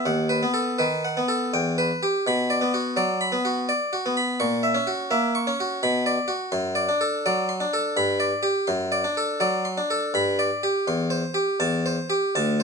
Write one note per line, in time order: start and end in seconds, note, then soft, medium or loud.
0.06 0.41 D#2 soft
0.06 0.32 F#5 medium
0.29 0.56 B4 soft
0.43 0.82 B3 soft
0.54 0.80 A4 soft
0.79 1.19 D#3 soft
0.79 1.05 B4 soft
1.05 1.31 F#5 soft
1.17 1.54 B3 soft
1.28 1.54 A4 soft
1.54 1.89 E2 soft
1.54 1.80 G5 medium
1.78 2.04 B4 soft
2.03 2.27 G4 soft
2.27 2.61 B2 soft
2.27 2.52 B5 medium
2.50 2.75 D5 soft
2.61 2.99 B3 soft
2.74 2.98 F#4 soft
2.97 3.34 F#3 soft
2.97 3.22 D5 soft
3.21 3.46 B5 soft
3.32 3.70 B3 soft
3.45 3.70 F#4 soft
3.69 3.94 D5 soft
3.93 4.18 F#4 soft
4.06 4.41 B3 soft
4.17 4.40 B5 soft
4.40 4.75 A#2 medium
4.40 4.65 C#6 medium
4.63 4.89 E5 soft
4.75 5.13 C#4 soft
4.87 5.13 F#4 soft
5.11 5.49 A#3 soft
5.11 5.36 E5 soft
5.35 5.60 C#6 soft
5.47 5.83 C#4 soft
5.60 5.83 F#4 soft
5.83 6.17 B2 medium
5.83 6.07 B5 medium
6.06 6.30 D5 soft
6.28 6.52 F#4 soft
6.52 6.87 F#2 medium
6.52 6.77 C6 medium
6.75 7.01 D5 medium
6.89 7.27 D4 soft
7.01 7.26 A4 soft
7.26 7.63 F#3 soft
7.26 7.50 D5 soft
7.49 7.74 C6 medium
7.60 7.96 D4 medium
7.73 7.97 A4 medium
7.97 8.31 G2 medium
7.97 8.22 B5 medium
8.20 8.45 D5 soft
8.43 8.67 G4 soft
8.67 9.03 F#2 medium
8.67 8.93 C6 medium
8.92 9.17 D5 soft
9.04 9.42 D4 soft
9.17 9.42 A4 medium
9.40 9.78 F#3 soft
9.40 9.66 D5 medium
9.65 9.90 C6 medium
9.78 10.13 D4 medium
9.91 10.14 A4 medium
10.14 10.49 G2 medium
10.14 10.39 B5 medium
10.39 10.63 D5 medium
10.63 10.86 G4 medium
10.88 11.22 E2 medium
10.88 11.12 C6 medium
11.10 11.35 C5 medium
11.34 11.59 G4 soft
11.60 11.96 E2 medium
11.60 11.86 A5 medium
11.86 12.12 C5 medium
12.10 12.36 G4 medium
12.35 12.63 D2 medium
12.35 12.63 A5 medium